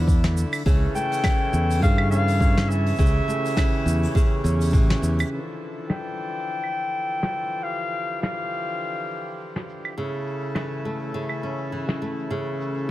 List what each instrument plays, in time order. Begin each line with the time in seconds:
Already playing: fingered electric bass E2, harmonium D3 A3 E4 A4, nylon-string guitar D3 A3 E4
0.08 kick, open hi-hat, shaker
0.24 snare
0.37 shaker
0.53 open hi-hat, claves, shaker
0.65 fingered electric bass C#2, nylon-string guitar C#3, harmonium E3 A3 C#4 A4, kick, open hi-hat, shaker
0.95 nylon-string guitar A3, clarinet G5, shaker
1.12 open hi-hat, shaker
1.24 nylon-string guitar E3, kick, snare, open hi-hat, claves, shaker
1.53 fingered electric bass E2, shaker
1.70 open hi-hat, shaker
1.82 fingered electric bass G2, nylon-string guitar C#3, clarinet F5, kick, open hi-hat, shaker
1.98 claves
2.11 nylon-string guitar C#4, clarinet F5, shaker
2.28 open hi-hat, shaker
2.40 nylon-string guitar E3, kick, open hi-hat, shaker
2.57 snare
2.69 clarinet E5, shaker
2.86 open hi-hat, shaker
2.96 fingered electric bass C#2, nylon-string guitar C#3, harmonium G4, kick, open hi-hat, shaker
2.99 shaker
3.06 shaker
3.28 nylon-string guitar A3, shaker
3.46 open hi-hat, shaker
3.57 nylon-string guitar E3, kick, snare, open hi-hat, claves, shaker
3.86 fingered electric bass E2, shaker
4.03 open hi-hat, shaker
4.15 nylon-string guitar C#3, kick, open hi-hat, shaker
4.44 fingered electric bass E2, nylon-string guitar C#4, shaker
4.61 open hi-hat, shaker
4.65 shaker
4.70 fingered electric bass A1, nylon-string guitar E3, kick, shaker
4.74 open hi-hat, shaker
4.90 snare
5.02 fingered electric bass E2, shaker
5.19 open hi-hat, claves, shaker
5.31 harmonium D3 E3 F3 A4, shaker
5.62 shaker
5.78 shaker
5.89 clarinet G5, snare, claves, shaker
6.20 shaker
6.37 shaker
6.64 claves
6.78 shaker
6.94 shaker
7.06 shaker
7.23 snare
7.36 shaker
7.52 shaker
7.63 harmonium G4, clarinet F5, shaker
7.94 shaker
8.10 shaker
8.21 clarinet F5, snare, shaker
8.52 shaker
8.69 shaker
8.81 shaker
9.11 shaker
9.27 shaker
9.40 shaker
9.56 snare
9.69 shaker
9.85 claves, shaker
9.97 harmonium C#3 A3 E4 A4, nylon-string guitar C#3, shaker
10.27 shaker
10.44 shaker
10.55 nylon-string guitar E3, snare, claves, shaker
10.85 nylon-string guitar A3, shaker
11.02 shaker
11.14 nylon-string guitar C#3, shaker
11.29 claves
11.43 nylon-string guitar C#4, shaker
11.72 nylon-string guitar E3, shaker
11.89 snare
12.02 nylon-string guitar A3, shaker
12.19 shaker
12.31 nylon-string guitar C#3, shaker
12.61 shaker
12.77 shaker